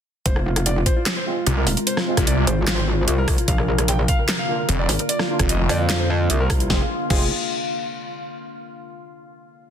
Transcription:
0.26 F1 C3 G#3 F4 C5, kick, closed hi-hat
0.36 F4, cross-stick
0.46 F4
0.56 F4, cross-stick, closed hi-hat
0.66 D5, closed hi-hat
0.76 F4
0.86 C5, kick, closed hi-hat
0.96 F4
1.06 snare, clap, closed hi-hat
1.17 C5
1.26 G#3 C4 F4
1.37 F4
1.47 C2, closed hi-hat
1.57 A#4
1.67 D#1 F4, open hi-hat
1.77 F4, closed hi-hat
1.87 C5, closed hi-hat
1.97 F4, cross-stick, snare
2.07 G#3 C4 F4
2.17 C2 F4, kick, cross-stick, closed hi-hat
2.27 D5, closed hi-hat
2.38 F4
2.47 G#1 C5, closed hi-hat
2.58 F4
2.67 G#3 C4 F4, snare, clap, closed hi-hat
2.78 C5
2.88 F4
2.98 F4
3.08 C2 F4, closed hi-hat
3.18 A#4
3.28 F4, kick, cross-stick, open hi-hat
3.38 F4, closed hi-hat
3.48 A#1 D3 A#3 F5, kick, closed hi-hat
3.58 A#4, cross-stick
3.68 A#4
3.78 A#4, cross-stick, closed hi-hat
3.88 G5, closed hi-hat
3.99 A#4
4.08 F5, kick, closed hi-hat
4.19 A#4
4.29 A#4, snare, clap, closed hi-hat
4.39 F5
4.49 A#3 D4 F4 A#4
4.59 A#4
4.69 F1, closed hi-hat
4.79 D5
4.89 G#1 A#4, open hi-hat
4.99 A#4, closed hi-hat
5.09 D5, closed hi-hat
5.19 F4, cross-stick, snare
5.29 A#3 D4 F4
5.39 F1 F4, kick, cross-stick, closed hi-hat
5.49 D#5, closed hi-hat
5.60 F4
5.69 F2 D5, open hi-hat
5.80 F4
5.89 A#3 D4 F4, snare, clap, closed hi-hat
6.00 C5
6.10 F4
6.20 F4
6.30 C2 F4, closed hi-hat
6.40 A#4
6.50 F4, kick, cross-stick, open hi-hat
6.60 F4, closed hi-hat
6.70 F1 G#3 C4 F4 G#4, kick, snare
7.10 F1 G#3 C4 F4 G#4, kick, crash

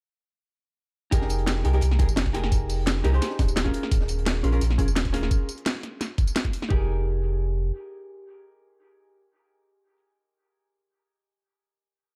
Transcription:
1.11 F1 D#4 G4 G#4 A#4, kick, closed hi-hat, tambourine
1.21 snare
1.29 closed hi-hat, tambourine
1.38 closed hi-hat
1.46 snare, closed hi-hat, tambourine
1.56 snare
1.64 C2 D#4 G4 G#4 A#4, closed hi-hat
1.73 D#4 G4 G#4 A#4, closed hi-hat
1.81 C2, closed hi-hat, tambourine
1.91 snare
1.99 D#4 G4 G#4 A#4, kick, closed hi-hat, tambourine
2.09 F1, closed hi-hat, tambourine
2.16 snare, closed hi-hat, tambourine
2.26 kick, closed hi-hat
2.33 D#4 G4 G#4 A#4, snare, closed hi-hat
2.44 snare
2.52 kick, closed hi-hat, tambourine
2.69 closed hi-hat, open hi-hat, tambourine
2.86 snare, closed hi-hat, tambourine
2.96 snare
3.04 C2 D#4 G4 G#4 A#4, snare, closed hi-hat
3.12 D#4 G4 G#4 C5, closed hi-hat
3.22 snare, closed hi-hat, tambourine
3.30 snare
3.39 D#1, kick, snare, closed hi-hat, tambourine
3.48 closed hi-hat, tambourine
3.56 snare, closed hi-hat, tambourine
3.64 C#4 F4 G#4 A#4, kick, snare, closed hi-hat
3.74 closed hi-hat
3.83 snare
3.91 D#1, kick, closed hi-hat, tambourine
4.01 snare
4.08 closed hi-hat, tambourine
4.18 closed hi-hat
4.26 snare, closed hi-hat, tambourine
4.35 snare
4.43 A#1 C#4 F4 G#4 A#4, closed hi-hat
4.52 C#4 F4 G#4 A#4, closed hi-hat
4.61 A#1, closed hi-hat, tambourine
4.70 snare
4.78 C#4 F4 G#4 A#4, kick, closed hi-hat, tambourine
4.88 D#1, closed hi-hat, tambourine
4.96 snare, closed hi-hat, tambourine
5.05 kick, closed hi-hat
5.13 C#4 F4 G#4 A#4, snare, closed hi-hat, open hi-hat
5.23 snare
5.31 kick, closed hi-hat, tambourine
5.49 closed hi-hat, tambourine
5.58 closed hi-hat
5.66 snare, closed hi-hat, tambourine
5.83 snare, closed hi-hat
6.01 snare, closed hi-hat, tambourine
6.18 kick, closed hi-hat, tambourine
6.27 closed hi-hat, tambourine
6.36 snare, closed hi-hat, tambourine
6.45 kick, snare, closed hi-hat
6.53 open hi-hat, tambourine
6.62 snare
6.69 F1 D#4 G4 G#4 A#4, kick

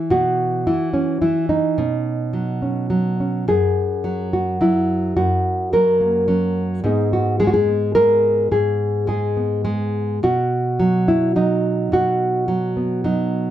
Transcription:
Already playing: E3 E4 G#4
0.10 B2 F#4
0.67 E3 E4
0.93 C#4
1.22 E3 E4
1.49 D#4
1.78 B2 C#4
2.33 F#3
2.62 C#4
2.90 F#3
3.20 C#4
3.48 F#2 G#4
4.04 F#3
4.33 F#4
4.61 F#3 E4
5.17 F#2 F#4
5.73 F#3 A#4
6.00 A#3
6.28 F#3 C#4
6.84 G#2 G#3 B3 D#4 G#4
7.13 F#4
7.40 G#3 G#4
7.47 F#4
7.54 G#4
7.68 B3
7.95 G#3 A#4
8.51 G#2 G#4
9.07 G#3 G#4
9.37 B3
9.65 G#3
10.23 B2 F#4
10.80 F#3
11.08 E4
11.36 F#3 D#4
11.92 B2 F#4
12.48 F#3
12.77 B3
13.04 F#3 D#4

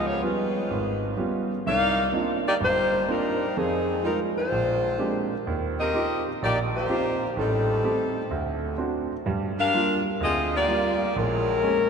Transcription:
Already playing: C#2 F3
0.07 B3 F4 G#4 C#5
0.22 G3 G#3 B3 C#4 F4 B4
0.71 G#1
1.17 G3 B3 C#4 F4
1.66 C2 D#4 A#4 D5 F5
2.13 A#3 C4 D4 D#4 F4
2.48 A#3 D#4 G4 D5
2.60 G1 G2 D#4 G4 C5
2.64 A#3
3.08 G3 A#3 C4 D4 D#4 F4 A#4
3.57 F2 F3 C4 D#4 G#4
4.03 G3 G#3 C4 D#4 F4 A#4
4.38 G#3 D4 F4 C5
4.52 A#1
4.99 G#3 A#3 C4 D4 G4
5.47 D#2
5.80 C4 G4 A#4 D#5
5.94 C4 D#4 F4 G4
6.42 A#1 A#3 D#4 G4 D5
6.76 A#3 F4 G4 C5
6.89 C4 D#4 F4 G4
7.36 A1 G3 C4 D#4 A4
7.84 A3 C4 G4
8.31 D2
8.78 C4 D4 F#4
9.26 G2 G3
9.59 D4 G4 A#4 F5
9.74 G3 A#3 F4
10.21 D2 C4 F4 G#4 D#5
10.56 A#3 F4 G4 D5
10.68 G3 A#3 F4
11.16 A#1 G#3 C#4 E4 A#4
11.63 G#3 A#3 C#4

